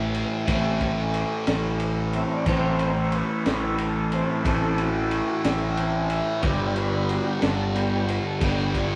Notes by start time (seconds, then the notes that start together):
Already playing: A1 A2 E3 A3
0.14 ride
0.47 A1 A2 E3 A3, kick, ride
0.51 A3 C4
0.81 kick, ride
1.14 ride
1.47 A1, snare, ride
1.80 ride
2.13 E3 A3 C4 E5, ride
2.34 D5
2.45 A1 A2 E3 A3 C4 C5, kick, crash
2.79 ride
3.12 B4, ride
3.46 A1, snare, ride
3.78 A4, ride
4.12 E3 A3 C4 C5, ride
4.30 B4
4.44 A1 A2 E3 A3 C4 A4, kick, ride
4.78 F#4, ride
5.11 G4, ride
5.29 F#4
5.44 A1 E4, snare, ride
5.77 E3 A3 C4, ride
6.10 ride
6.43 G1 G2 D3 G3 B3 G4, kick, ride
6.76 B4, ride
7.09 F#4, ride
7.24 G4
7.40 G1 A4, snare, ride
7.74 D3 G3 B3 G4, ride
8.09 B4, ride
8.26 A4
8.41 G1 G2 D3 G3 B3 G4, kick, ride
8.74 E4, kick, ride